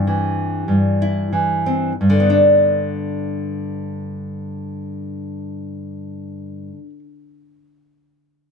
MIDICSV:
0, 0, Header, 1, 2, 480
1, 0, Start_track
1, 0, Key_signature, 1, "major"
1, 0, Tempo, 1229508
1, 269, Tempo, 1310044
1, 749, Time_signature, 4, 2, 24, 8
1, 749, Tempo, 1354402
1, 3056, End_track
2, 0, Start_track
2, 0, Title_t, "Nylon-string guitar"
2, 0, Program_c, 0, 24
2, 0, Note_on_c, 0, 43, 64
2, 0, Note_on_c, 0, 60, 47
2, 0, Note_on_c, 0, 67, 51
2, 28, Note_on_c, 0, 52, 46
2, 261, Note_off_c, 0, 43, 0
2, 265, Note_on_c, 0, 43, 47
2, 388, Note_off_c, 0, 67, 0
2, 390, Note_on_c, 0, 64, 45
2, 498, Note_off_c, 0, 52, 0
2, 502, Note_on_c, 0, 52, 44
2, 621, Note_off_c, 0, 60, 0
2, 626, Note_on_c, 0, 60, 39
2, 718, Note_off_c, 0, 52, 0
2, 719, Note_off_c, 0, 60, 0
2, 722, Note_off_c, 0, 64, 0
2, 748, Note_off_c, 0, 43, 0
2, 752, Note_on_c, 0, 43, 49
2, 784, Note_on_c, 0, 50, 46
2, 820, Note_on_c, 0, 59, 45
2, 855, Note_on_c, 0, 62, 48
2, 2416, Note_off_c, 0, 43, 0
2, 2447, Note_off_c, 0, 50, 0
2, 2484, Note_off_c, 0, 59, 0
2, 2518, Note_off_c, 0, 62, 0
2, 3056, End_track
0, 0, End_of_file